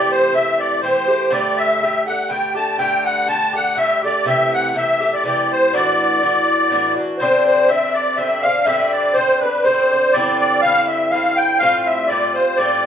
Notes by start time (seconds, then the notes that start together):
Already playing: C3 E3 A3 G4 D5
0.12 C5
0.31 C3 E3 A3 G4 E5
0.60 D5
0.81 C3 E3 A3 G4 C5
1.08 E3 A3 G4
1.31 G2 D3 A3 G4 D5
1.58 E5
1.81 G2 D3 A3 G4
2.06 D3 A3 G4 F#5
2.29 G2 D3 A3 G4 G5
2.55 D3 A3 G4 A5
2.78 G2 D3 A3 G4 G5
3.05 F#5
3.27 G2 D3 A3 G4 A5
3.53 D3 A3 G4 F#5
3.75 G2 D3 A3 G4 E5
4.02 D3 A3 G4 D5
4.25 C3 E3 A3 G4 E5
4.54 F#5
4.74 C3 E3 A3 G4 E5
5.00 E3 A3 G4
5.14 D5
5.24 C3 E3 A3 G4 D5
5.52 C5
5.73 A2 E3 D4 F#4 D5
6.22 A2 E3 D4 F#4
6.70 A2 E3 D4 F#4
6.97 E3 D4 F#4
7.18 G2 D3 C4 C5
7.23 D4
7.47 C5
7.68 G2 D3 C4 D4 E5
7.94 D5
8.16 G2 D3 C4 D4 E5
8.42 C4 D4 F5
8.47 D3
8.65 G2 D3 C4 D4 E5
8.92 D5
9.14 G2 D3 C4 C5
9.18 D4
9.39 C4 D4 B4
9.45 D3
9.63 G2 D3 C4 C5
9.68 D4
9.91 D3 C4 D4
10.12 G2 D3 C4 D5
10.17 E4
10.39 D5
10.61 G2 D3 C4 F5
10.66 E4
10.88 E5
11.10 G2 D3 C4 F5
11.15 E4
11.37 G5
11.58 A2 G3 C4 F5
11.63 F4
11.81 F5
11.86 E5
12.08 A2 G3 D5
12.12 C4 F4
12.34 F4 C5
12.38 G3 C4
12.56 A2 G3 D5
12.60 C4 F4